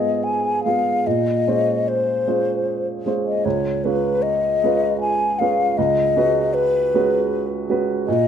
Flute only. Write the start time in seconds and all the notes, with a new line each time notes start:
Already playing: D#5
0.24 G#5
0.64 F5
1.07 D#5
1.88 C5
3.25 D#5
3.45 C#5
3.84 B4
4.22 D#5
5.01 G#5
5.39 F5
5.78 D#5
6.54 B4
8.06 D#5